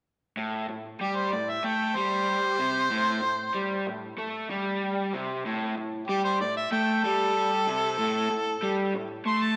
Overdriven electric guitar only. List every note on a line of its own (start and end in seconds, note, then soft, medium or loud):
0.37 0.67 A2 loud
0.69 0.94 A2 medium
1.01 1.31 G3 medium
1.33 1.58 A2 medium
1.64 1.95 A3 medium
1.96 2.59 G3 medium
2.59 2.90 C3 medium
2.91 3.22 A2 loud
3.23 3.48 A2 medium
3.54 3.85 G3 medium
3.87 4.12 A2 medium
4.18 4.49 A3 medium
4.50 5.12 G3 medium
5.14 5.44 C3 medium
5.46 5.76 A2 loud
5.78 6.02 A2 medium
6.09 6.39 G3 medium
6.40 6.65 A2 medium
6.72 7.03 A3 loud
7.05 7.66 G3 medium
7.67 7.97 C3 medium
7.99 8.29 A2 loud
8.31 8.56 A2 medium
8.63 8.93 G3 medium
8.94 9.19 A2 medium
9.25 9.56 A3 medium